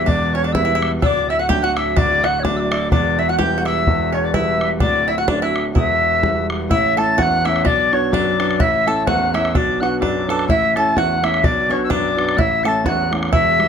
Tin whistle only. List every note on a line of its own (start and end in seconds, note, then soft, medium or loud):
0.05 0.35 D6 medium
0.33 0.44 C#6 medium
0.43 0.54 D6 medium
0.53 0.91 E6 medium
1.02 1.08 E6 medium
1.07 1.31 D6 medium
1.29 1.41 E6 medium
1.39 1.49 F#6 medium
1.49 1.61 G6 medium
1.62 1.75 F#6 medium
1.75 1.98 E6 medium
1.97 2.25 D6 medium
2.24 2.45 F#6 medium
2.43 2.58 D6 medium
2.57 2.76 D6 medium
2.57 2.61 E6 soft
2.74 2.77 C#6 medium
2.74 2.91 D6 medium
2.91 3.20 D6 medium
3.19 3.31 E6 medium
3.30 3.38 F#6 medium
3.38 3.64 G6 medium
3.67 4.11 E6 medium
4.14 4.19 C#6 medium
4.24 4.33 D6 medium
4.34 4.69 E6 medium
4.81 5.09 D6 medium
5.08 5.20 E6 medium
5.19 5.30 F#6 medium
5.28 5.41 D6 medium
5.42 5.64 E6 medium
5.42 5.46 F#6 medium
5.77 5.88 D#6 medium
5.88 6.47 E6 medium
6.70 6.96 E6 medium
6.98 7.18 A6 medium
7.18 7.24 A6 medium
7.23 7.47 F#6 medium
7.45 7.65 E6 medium
7.65 7.94 D6 medium
7.93 8.14 C#6 medium
8.12 8.58 D6 medium
8.59 8.65 F#6 medium
8.64 9.03 E6 medium
9.06 9.35 F#6 medium
9.34 9.53 E6 medium
9.53 9.58 E6 medium
9.57 9.82 D6 medium
9.80 9.99 F#6 medium
10.00 10.45 D6 medium
10.48 10.74 E6 medium
10.75 10.95 A6 medium
10.95 11.25 F#6 medium
10.95 11.00 A6 medium
11.24 11.42 E6 medium
11.43 11.71 D6 medium
11.70 11.83 C#6 medium
11.84 11.92 E6 medium
11.90 12.39 D6 medium
12.37 12.65 E6 medium
12.37 12.41 F#6 medium
12.64 12.69 C#7 medium
12.68 12.85 A6 medium
12.85 12.90 A6 medium
12.89 13.12 F#6 medium
13.33 13.68 E6 medium